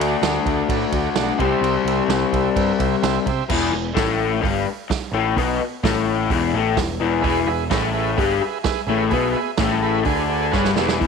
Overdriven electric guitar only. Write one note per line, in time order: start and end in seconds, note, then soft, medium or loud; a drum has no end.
0.00 1.36 D3 medium
0.00 1.38 A3 medium
0.00 1.38 D4 medium
1.38 3.24 C3 medium
1.38 3.25 G3 medium
1.43 3.26 C4 medium
3.49 3.71 E2 medium
3.49 3.72 E3 loud
3.72 3.91 E2 medium
3.94 4.41 A2 loud
3.94 4.41 A3 loud
4.41 4.64 G2 loud
4.41 4.65 G3 loud
4.90 muted overdriven electric guitar stroke medium
5.14 5.36 A2 medium
5.14 5.36 A3 medium
5.37 5.59 B2 medium
5.37 5.60 B3 loud
5.60 muted overdriven electric guitar stroke medium
5.84 6.29 A2 loud
5.84 6.30 A3 loud
6.30 6.53 E2 loud
6.30 6.53 E3 loud
6.54 6.76 A2 medium
6.54 6.77 A3 loud
6.78 6.96 E2 medium
7.00 7.22 E2 medium
7.00 7.23 E3 loud
7.23 7.46 E2 medium
7.23 7.47 E3 loud
7.48 7.66 E2 medium
7.70 8.17 A2 loud
7.70 8.17 A3 loud
8.18 8.40 G2 loud
8.18 8.41 G3 loud
8.66 muted overdriven electric guitar stroke medium
8.89 9.11 A2 medium
8.89 9.12 A3 medium
9.12 9.35 B2 medium
9.12 9.35 B3 loud
9.37 muted overdriven electric guitar stroke medium
9.60 10.04 A2 loud
9.60 10.06 A3 loud
10.04 10.52 D3 loud
10.04 10.53 D4 loud
10.53 10.76 G2 medium
10.53 10.76 G3 loud
10.76 10.99 E2 medium
10.76 10.99 E3 medium
11.00 11.07 E2 medium
11.00 11.07 E3 loud